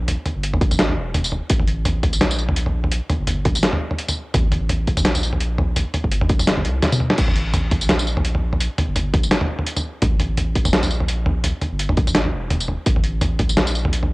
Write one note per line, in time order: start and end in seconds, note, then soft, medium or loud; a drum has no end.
0.00 0.17 A#1 medium
0.08 closed hi-hat medium
0.08 mid tom soft
0.26 closed hi-hat soft
0.26 mid tom medium
0.36 0.63 G1 loud
0.43 closed hi-hat medium
0.54 mid tom medium
0.61 0.98 A1 medium
0.61 kick loud
0.61 closed hi-hat soft
0.71 mid tom medium
0.71 tambourine medium
0.79 snare loud
0.79 closed hi-hat medium
0.89 mid tom medium
0.97 1.41 E1 medium
1.14 closed hi-hat medium
1.14 mid tom medium
1.24 tambourine medium
1.32 mid tom soft
1.50 2.02 A1 loud
1.50 kick loud
1.50 closed hi-hat medium
1.60 mid tom medium
1.68 closed hi-hat soft
1.85 closed hi-hat medium
1.85 mid tom medium
2.03 2.20 A1 medium
2.03 kick medium
2.03 closed hi-hat soft
2.03 mid tom soft
2.13 tambourine medium
2.21 3.01 A#1 medium
2.21 snare loud
2.21 closed hi-hat medium
2.21 mid tom soft
2.31 tambourine medium
2.38 tambourine soft
2.49 mid tom medium
2.56 closed hi-hat medium
2.66 mid tom medium
2.84 mid tom medium
2.92 closed hi-hat medium
3.10 closed hi-hat soft
3.10 mid tom medium
3.20 3.47 G1 loud
3.27 closed hi-hat medium
3.27 mid tom medium
3.45 3.62 A1 medium
3.45 kick loud
3.45 closed hi-hat soft
3.45 mid tom medium
3.55 tambourine medium
3.63 snare loud
3.63 closed hi-hat medium
3.73 mid tom medium
3.91 mid tom medium
3.98 closed hi-hat medium
4.08 mid tom medium
4.08 tambourine medium
4.34 4.86 A1 loud
4.34 kick loud
4.34 closed hi-hat medium
4.34 mid tom medium
4.52 closed hi-hat soft
4.52 mid tom medium
4.69 closed hi-hat medium
4.69 mid tom medium
4.87 5.04 A1 medium
4.87 kick medium
4.87 closed hi-hat soft
4.97 mid tom medium
4.97 tambourine medium
5.05 5.85 A#1 medium
5.05 snare loud
5.05 closed hi-hat medium
5.15 mid tom medium
5.15 tambourine medium
5.23 tambourine soft
5.33 mid tom medium
5.40 closed hi-hat medium
5.58 mid tom medium
5.76 closed hi-hat medium
5.76 mid tom medium
5.94 closed hi-hat soft
5.94 mid tom medium
6.04 6.31 G1 loud
6.04 kick medium
6.11 closed hi-hat medium
6.21 mid tom medium
6.29 6.48 A1 medium
6.29 kick loud
6.29 closed hi-hat soft
6.39 mid tom medium
6.39 tambourine medium
6.47 6.66 G1 medium
6.47 snare loud
6.47 closed hi-hat medium
6.57 mid tom medium
6.65 6.81 C2 loud
6.65 closed hi-hat soft
6.82 snare medium
6.82 closed hi-hat medium
6.82 mid tom medium
6.92 high tom medium
6.92 tambourine medium
7.00 mid tom medium
7.10 snare medium
7.18 7.70 A1 loud
7.18 kick loud
7.18 closed hi-hat medium
7.18 crash medium
7.28 mid tom medium
7.36 closed hi-hat soft
7.54 closed hi-hat medium
7.54 mid tom medium
7.71 7.88 A1 medium
7.71 kick medium
7.71 closed hi-hat soft
7.71 mid tom medium
7.81 tambourine medium
7.89 8.69 A#1 medium
7.89 snare loud
7.89 closed hi-hat medium
7.89 mid tom medium
7.99 tambourine medium
8.07 tambourine soft
8.17 mid tom medium
8.25 closed hi-hat medium
8.35 mid tom medium
8.53 mid tom medium
8.60 closed hi-hat medium
8.78 closed hi-hat soft
8.78 mid tom medium
8.88 9.15 G1 loud
8.96 closed hi-hat medium
8.96 mid tom medium
9.14 9.30 A1 medium
9.14 kick loud
9.14 closed hi-hat soft
9.14 mid tom medium
9.23 tambourine medium
9.31 snare loud
9.31 closed hi-hat medium
9.41 mid tom medium
9.59 mid tom medium
9.67 closed hi-hat medium
9.77 mid tom medium
9.77 tambourine medium
10.02 10.54 A1 loud
10.02 kick loud
10.02 closed hi-hat medium
10.02 mid tom medium
10.20 closed hi-hat soft
10.20 mid tom medium
10.37 closed hi-hat medium
10.37 mid tom medium
10.55 10.72 A1 medium
10.55 kick medium
10.55 closed hi-hat soft
10.65 mid tom medium
10.65 tambourine medium
10.73 11.53 A#1 medium
10.73 snare loud
10.73 closed hi-hat medium
10.83 mid tom medium
10.83 tambourine medium
10.91 tambourine soft
11.00 mid tom medium
11.08 closed hi-hat medium
11.26 mid tom medium
11.44 closed hi-hat medium
11.44 mid tom medium
11.61 closed hi-hat soft
11.61 mid tom medium
11.72 11.99 G1 loud
11.79 closed hi-hat medium
11.89 mid tom medium
11.97 12.34 A1 medium
11.97 kick loud
11.97 closed hi-hat soft
12.07 mid tom medium
12.07 tambourine medium
12.15 snare loud
12.15 closed hi-hat medium
12.25 mid tom medium
12.33 12.77 E1 medium
12.50 closed hi-hat medium
12.50 mid tom medium
12.60 tambourine medium
12.68 mid tom soft
12.86 13.38 A1 loud
12.86 kick loud
12.86 closed hi-hat medium
12.96 mid tom medium
13.04 closed hi-hat soft
13.21 closed hi-hat medium
13.21 mid tom medium
13.39 13.56 A1 medium
13.39 kick medium
13.39 closed hi-hat soft
13.39 mid tom medium
13.49 tambourine medium
13.57 14.13 A#1 medium
13.57 snare loud
13.57 closed hi-hat medium
13.57 mid tom soft
13.67 tambourine medium
13.75 tambourine soft
13.85 mid tom medium
13.93 closed hi-hat medium
14.03 mid tom medium